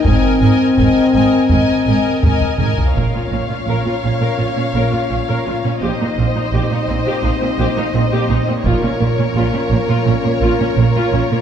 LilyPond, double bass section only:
\new Staff \with { instrumentName = "Double bass section" } { \clef bass \time 4/4 \key aes \mixolydian \tempo 4 = 84 aes,,8 aes,,8 aes,,8 aes,,8 aes,,8 aes,,8 aes,,8 aes,,8 | \key bes \dorian bes,,16 r16 bes,,16 r16 bes,,16 r16 bes,,16 r16 bes,,16 r16 bes,,16 r16 bes,,16 r16 bes,,16 r16 | bes,,16 r16 bes,,16 r16 bes,,16 r16 bes,,16 r16 bes,,16 r16 bes,,16 r16 bes,,16 r16 bes,,16 r16 | bes,,16 r16 bes,,16 r16 bes,,16 r16 bes,,16 r16 bes,,16 r16 bes,,16 r16 bes,,16 r16 bes,,16 r16 | }